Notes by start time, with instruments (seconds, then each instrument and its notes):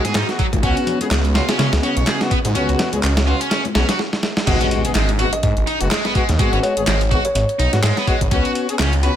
Already playing: string section D#3 G#3 B3 F#4
0.05 detuned saw bass G#2, distorted electric guitar G#4, snare, closed hi-hat
0.15 detuned saw bass G#2, distorted electric guitar D#4, snare, clap, closed hi-hat
0.29 brass ensemble G#3 B3 F#4, snare, closed hi-hat
0.39 distorted electric guitar F#3, kick, closed hi-hat
0.53 detuned saw bass G#1, kick, closed hi-hat, high conga
0.63 detuned saw bass C#2, string section C#3 G#3 B3, brass ensemble B3 C#4 F#4, distorted electric guitar C#4, kick, closed hi-hat
0.77 closed hi-hat
0.86 closed hi-hat, low conga
1.01 brass ensemble B3 C#4 G#4, closed hi-hat, high conga
1.11 detuned saw bass C#2, snare, clap, closed hi-hat
1.25 closed hi-hat
1.35 brass ensemble B3 C#4 F#4, distorted electric guitar F4, snare, closed hi-hat
1.49 distorted electric guitar C#4, snare, closed hi-hat
1.59 detuned saw bass C#3, distorted electric guitar C#4, snare, closed hi-hat
1.72 detuned saw bass C#2, snare, closed hi-hat
1.83 brass ensemble B3 C#4 F#4, distorted electric guitar C#4, closed hi-hat
1.97 detuned saw bass B1, distorted electric guitar C#5, closed hi-hat
2.07 distorted electric guitar G#4, snare, clap, closed hi-hat
2.21 brass ensemble B3 C#4 F#4, snare, closed hi-hat
2.31 distorted electric guitar B3, kick, closed hi-hat
2.45 detuned saw bass G#2, closed hi-hat, high conga
2.55 detuned saw bass C#2, brass ensemble B3 C#4 F#4, distorted electric guitar C#4, string section C#4, closed hi-hat
2.69 detuned saw bass C#2, closed hi-hat
2.79 snare, closed hi-hat, low conga
2.93 detuned saw bass C#2, brass ensemble B3 C#4 G#4, closed hi-hat, high conga
3.03 detuned saw bass C#2, clap, closed hi-hat
3.17 snare, closed hi-hat
3.27 brass ensemble B3 C#4 F#4, distorted electric guitar F4, closed hi-hat
3.41 distorted electric guitar C#4, closed hi-hat
3.51 distorted electric guitar C#4, snare, closed hi-hat
3.65 closed hi-hat, high conga
3.75 detuned saw bass B1, brass ensemble B3 C#4 F#4, distorted electric guitar C#4, snare, closed hi-hat
3.89 distorted electric guitar F#4, snare, closed hi-hat
3.99 snare
4.13 snare
4.23 snare
4.37 snare
4.47 detuned saw bass G#1, distorted electric guitar G#3, brass ensemble G#3 B3 F#4, kick, closed hi-hat, crash, impact
4.61 distorted electric guitar C#4, closed hi-hat
4.71 closed hi-hat
4.85 brass ensemble G#3 B3 G#4, closed hi-hat
4.95 detuned saw bass G#1, distorted electric guitar G#3, snare, clap, closed hi-hat
5.09 closed hi-hat
5.19 brass ensemble G#3 B3 F#4, distorted electric guitar F#4, closed hi-hat
5.33 kalimba D#5, closed hi-hat
5.43 detuned saw bass G#2, kalimba D#5, kick, closed hi-hat
5.57 detuned saw bass G#1, closed hi-hat
5.67 distorted electric guitar D#4, closed hi-hat
5.81 detuned saw bass F#1, brass ensemble G#3 B3 F#4, closed hi-hat
5.91 distorted electric guitar G#3, snare, clap, closed hi-hat
6.05 distorted electric guitar B3, snare, closed hi-hat
6.15 brass ensemble G#3 B3 F#4, distorted electric guitar G#3, kick, closed hi-hat
6.29 detuned saw bass D#2, snare, closed hi-hat
6.39 detuned saw bass G#1, brass ensemble G#3 B3 F#4, distorted electric guitar G#3, kick, closed hi-hat
6.53 detuned saw bass G#1, distorted electric guitar C#4, closed hi-hat
6.63 kalimba C#5, closed hi-hat
6.77 detuned saw bass G#1, brass ensemble G#3 B3 G#4, closed hi-hat
6.87 detuned saw bass G#1, distorted electric guitar G#3, snare, clap, closed hi-hat
7.01 closed hi-hat
7.11 brass ensemble G#3 B3 F#4, distorted electric guitar F#4, kick, closed hi-hat
7.25 kalimba C#5, closed hi-hat
7.35 detuned saw bass G#1, kalimba C#5, closed hi-hat
7.49 closed hi-hat
7.59 detuned saw bass B1, distorted electric guitar D#4, closed hi-hat
7.73 detuned saw bass G#2, brass ensemble G#3 B3 F#4, snare, closed hi-hat
7.83 detuned saw bass G#2, distorted electric guitar G#3, snare, clap, closed hi-hat
7.97 distorted electric guitar B3, snare, closed hi-hat
8.07 distorted electric guitar G#3, brass ensemble G#3 B3 F#4, kick, closed hi-hat
8.21 detuned saw bass G#1, kick, closed hi-hat
8.31 detuned saw bass C#2, brass ensemble B3 C#4 F#4, distorted electric guitar C#4, kick, closed hi-hat
8.45 distorted electric guitar F#4, closed hi-hat
8.55 closed hi-hat
8.69 brass ensemble B3 C#4 G#4, closed hi-hat
8.79 detuned saw bass C#2, distorted electric guitar C#4, snare, clap, closed hi-hat
8.93 closed hi-hat
9.03 brass ensemble B3 C#4 F#4, distorted electric guitar B4, closed hi-hat